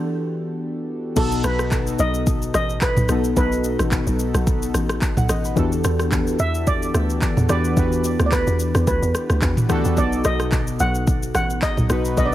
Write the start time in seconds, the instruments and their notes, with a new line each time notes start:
Already playing: synth keys E3 B3 D4 F#4 G4 A4, steel pan E5
1.16 log drum bass B1, synth keys B2 B3 D#4 F#4 A4, steel pan A4, kick, crash, shaker
1.32 shaker
1.44 log drum bass B1, steel pan B4, cross-stick, shaker
1.59 cross-stick, shaker
1.71 kick, clap, shaker
1.87 shaker
1.99 log drum bass B1, steel pan D#5, shaker
2.14 shaker
2.27 kick, shaker
2.42 shaker
2.54 log drum bass A1, steel pan D#5, cross-stick, shaker
2.69 shaker
2.81 steel pan B4, kick, clap, shaker
2.96 log drum bass B1, mid tom, shaker
3.08 log drum bass B1, synth keys B2 B3 D#4 F#4 A4, cross-stick, shaker
3.24 shaker
3.36 log drum bass B1, synth keys B2 B3 D#4 F#4 A4, steel pan B4, kick, shaker
3.52 shaker
3.64 shaker
3.79 log drum bass A1, cross-stick, shaker
3.91 kick, clap, shaker
4.07 log drum bass B1, shaker
4.19 shaker
4.34 log drum bass B1, cross-stick, shaker
4.47 kick, shaker
4.63 shaker
4.74 log drum bass A1, cross-stick, shaker
4.89 cross-stick, shaker
5.02 kick, clap, shaker
5.17 log drum bass B1, synth keys F#5, mid tom, shaker
5.29 log drum bass A1, synth keys D#5, cross-stick, shaker
5.45 synth keys B4, shaker
5.56 log drum bass E2, synth keys E3 B3 D4 F#4 G4 A4, kick, shaker
5.72 shaker
5.84 log drum bass E2, cross-stick, shaker
6.00 cross-stick, shaker
6.12 kick, clap, shaker
6.27 shaker
6.39 log drum bass E2, steel pan E5, shaker
6.55 shaker
6.67 steel pan D5, kick, shaker
6.83 shaker
6.94 log drum bass D2, cross-stick, shaker
7.10 shaker
7.22 kick, clap, shaker
7.37 log drum bass E2, mid tom, shaker
7.49 log drum bass E2, synth keys E3 B3 D4 F#4 G4 B4, steel pan D5, cross-stick, shaker
7.65 shaker
7.76 log drum bass E2, synth keys E3 B3 D4 F#4 G4 B4, kick, shaker
7.92 shaker
8.04 shaker
8.20 log drum bass D2, cross-stick, shaker
8.26 steel pan D5
8.32 steel pan B4, kick, clap, shaker
8.47 log drum bass E2, shaker
8.60 shaker
8.75 log drum bass E2, cross-stick, shaker
8.87 log drum bass D2, steel pan B4, kick, shaker
9.02 log drum bass E2, shaker
9.15 cross-stick, shaker
9.30 log drum bass D2, cross-stick, shaker
9.42 log drum bass E2, kick, clap, shaker
9.57 mid tom, shaker
9.69 log drum bass D2, synth keys E3 B3 D4 F#4 G4 A4, cross-stick, shaker
9.85 log drum bass E2, shaker
9.96 log drum bass B1, synth keys B2 B3 D#4 F#4 A4, steel pan D5, kick, shaker
10.13 shaker
10.24 log drum bass B1, steel pan D#5, cross-stick, shaker
10.40 cross-stick, shaker
10.52 kick, clap, shaker
10.67 shaker
10.80 log drum bass B1, steel pan F#5, shaker
10.95 shaker
11.07 kick, shaker
11.23 shaker
11.35 log drum bass A1, steel pan F#5, cross-stick, shaker
11.50 shaker
11.62 steel pan D#5, kick, clap, shaker
11.77 log drum bass B1, mid tom, shaker
11.89 log drum bass B1, synth keys B2 B3 D#4 F#4 B4, cross-stick, shaker
12.05 shaker
12.17 log drum bass B1, synth keys B2 B3 D4 F#4 B4, steel pan D#5, kick, shaker
12.25 synth keys D#4, steel pan D5